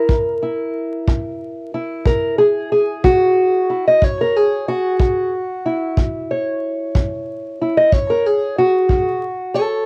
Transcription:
0.00 0.12 E4 soft
0.00 2.06 A#4 loud
0.09 0.68 F#2 medium
0.09 kick medium
0.42 1.74 E4 soft
1.07 1.67 F#2 medium
1.07 kick medium
1.74 3.69 E4 soft
2.06 2.64 F#2 medium
2.06 2.38 A#4 medium
2.06 kick medium
2.38 2.71 G#4 medium
2.72 3.69 G#4 medium
3.04 3.63 F#2 medium
3.04 3.86 F#4 loud
3.04 kick medium
3.70 4.06 E4 soft
3.88 4.04 D#5 medium
4.02 4.61 F#2 medium
4.02 4.68 C#5 medium
4.02 kick medium
4.21 4.37 A#4 medium
4.37 5.33 G#4 medium
4.68 5.98 F#4 medium
5.00 5.58 F#2 medium
5.00 kick medium
5.66 7.60 E4 soft
5.97 6.56 F#2 medium
5.97 kick medium
6.31 7.76 C#5 medium
6.95 7.53 F#2 medium
6.95 kick medium
7.61 7.89 E4 soft
7.77 7.92 D#5 medium
7.92 8.51 F#2 medium
7.92 8.57 C#5 loud
7.92 kick medium
8.10 8.26 A#4 medium
8.26 9.23 G#4 medium
8.58 9.56 F#4 medium
8.89 9.48 F#2 medium
8.89 kick medium
9.55 9.86 A4 medium
9.55 9.86 C#5 medium

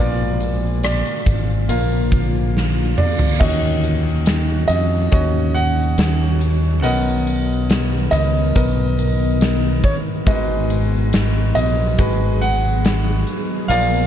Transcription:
0.00 1.01 A#1 loud
0.00 1.23 A#2 medium
0.00 3.37 D3 medium
0.00 1.60 A#3 medium
0.00 3.37 A#3 medium
0.00 1.61 F4 medium
0.00 3.37 F4 medium
0.00 0.82 D5 medium
0.00 1.61 D5 medium
0.40 closed hi-hat medium
0.83 2.94 D5 medium
0.83 cross-stick loud
0.83 closed hi-hat medium
1.05 closed hi-hat soft
1.26 1.67 G#1 medium
1.26 kick medium
1.26 closed hi-hat medium
1.69 2.94 A#1 medium
1.69 3.32 A#3 medium
1.69 3.32 F4 medium
1.69 3.33 F5 medium
1.69 closed hi-hat medium
1.69 reverse cymbal medium
2.12 kick medium
2.12 closed hi-hat medium
2.57 snare medium
2.98 3.42 D5 medium
2.98 mid tom medium
3.19 floor tom medium
3.40 4.65 D#2 medium
3.40 10.22 D#3 medium
3.40 4.66 D#3 medium
3.40 6.80 C#4 medium
3.40 5.04 C#4 medium
3.40 6.80 F#4 medium
3.40 5.04 F#4 medium
3.40 4.66 D#5 medium
3.40 5.04 D#5 medium
3.40 kick medium
3.40 crash medium
3.83 closed hi-hat medium
4.26 snare loud
4.26 closed hi-hat medium
4.68 5.09 F2 medium
4.68 5.57 D#5 loud
4.68 closed hi-hat medium
5.12 5.94 D#2 medium
5.12 6.75 C#4 medium
5.12 6.75 F#4 medium
5.12 6.75 D#5 medium
5.12 kick medium
5.12 closed hi-hat medium
5.54 6.37 F#5 loud
5.54 closed hi-hat medium
5.98 6.84 D#2 loud
5.98 snare loud
5.98 closed hi-hat medium
6.41 closed hi-hat medium
6.82 8.09 B1 loud
6.82 8.08 B2 medium
6.82 8.46 B3 medium
6.82 10.23 B3 medium
6.82 8.47 A#4 medium
6.82 10.24 A#4 medium
6.82 8.47 D#5 medium
6.82 8.16 F#5 medium
6.82 closed hi-hat medium
7.27 closed hi-hat medium
7.70 snare loud
7.70 closed hi-hat medium
8.11 8.52 C#2 medium
8.11 9.88 D#5 loud
8.11 closed hi-hat medium
8.55 9.80 B1 medium
8.55 10.18 B3 medium
8.55 10.18 A#4 medium
8.55 10.19 D#5 medium
8.55 kick medium
8.55 closed hi-hat medium
8.99 closed hi-hat medium
9.41 snare loud
9.41 closed hi-hat medium
9.83 9.94 C#5 medium
9.83 kick medium
9.83 closed hi-hat medium
10.26 11.51 G#1 loud
10.26 11.52 G#2 medium
10.26 13.67 F#3 medium
10.26 11.90 G#3 medium
10.26 13.67 B3 medium
10.26 11.90 F#4 medium
10.26 13.67 G#4 medium
10.26 11.90 B4 medium
10.26 11.52 D#5 medium
10.26 kick loud
10.26 closed hi-hat loud
10.70 closed hi-hat medium
11.13 snare loud
11.13 closed hi-hat medium
11.55 11.95 A#1 medium
11.55 12.37 D#5 loud
11.55 closed hi-hat medium
11.98 13.23 G#1 loud
11.98 13.61 G#3 medium
11.98 13.61 F#4 medium
11.98 13.62 B4 medium
11.98 kick medium
11.98 closed hi-hat medium
12.41 13.23 F#5 loud
12.41 closed hi-hat medium
12.85 snare loud
12.85 closed hi-hat medium
13.27 closed hi-hat medium
13.68 14.07 A#1 loud
13.68 14.07 A#2 medium
13.68 14.07 A#3 medium
13.68 14.07 F4 medium
13.68 14.07 D5 medium
13.68 14.07 F5 loud
13.68 closed hi-hat loud

